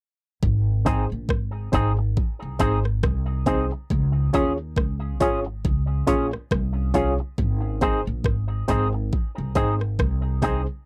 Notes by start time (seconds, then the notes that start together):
0.43 G#1, kick
0.85 C4 D#4 G#4 C5, kick, closed hi-hat
1.12 A#1
1.29 G#1, kick, cross-stick
1.72 G#1 C4 D#4 G#4 C5, kick, closed hi-hat
1.99 muted clean electric guitar stroke
2.17 kick
2.42 C2
2.59 G#1 C4 D#4 G#4 C5, kick, closed hi-hat
2.85 cross-stick
3.03 C2, kick, cross-stick
3.46 C4 D#4 G#4 C5, kick, closed hi-hat
3.72 muted clean electric guitar stroke
3.90 C#2, kick
4.33 D#2 C#4 F4 G#4 C#5, kick, closed hi-hat
4.76 C#2, kick, cross-stick
5.20 G#1 C#4 F4 G#4 C#5, kick, closed hi-hat
5.46 muted clean electric guitar stroke
5.65 C#2, kick
6.07 A#1 C#4 F4 G#4 C#5, kick, closed hi-hat
6.33 cross-stick
6.51 C2, kick, cross-stick
6.94 C#4 F4 G#4 C#5, kick, closed hi-hat
7.20 muted clean electric guitar stroke
7.38 G#1, kick
7.81 C4 D#4 G#4 C5, kick, closed hi-hat
8.07 A#1
8.24 G#1, kick, cross-stick
8.68 G#1 C4 D#4 G#4 C5, kick, closed hi-hat
8.94 muted clean electric guitar stroke
9.13 kick
9.38 C2
9.55 G#1 C4 D#4 G#4 C5, kick, closed hi-hat
9.81 cross-stick
9.99 C2, kick, cross-stick
10.42 C4 D#4 G#4 C5, kick, closed hi-hat